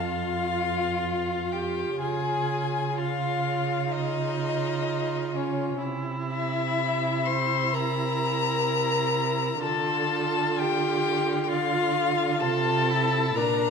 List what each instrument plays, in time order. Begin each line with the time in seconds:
Already playing: cello F2
0.00 viola F4, violin F4 F5
1.52 violin G4 G5
2.00 cello C#3, viola F4, violin G#4 G#5
2.97 viola F4, violin F4 F5
3.92 violin D#4 D#5
5.36 violin C#4 C#5
5.83 cello C3, viola E4
6.32 violin E4 E5
7.25 violin C5 C6
7.73 violin A#4 A#5
9.62 cello D3, viola F4, violin A4 A5
10.58 violin G4 G5
11.42 violin G5
11.48 viola F4, violin F4 F5
12.40 cello C3, viola F4, violin A4 A5
12.90 viola E4
13.35 cello A#2, viola D4, violin A#4 A#5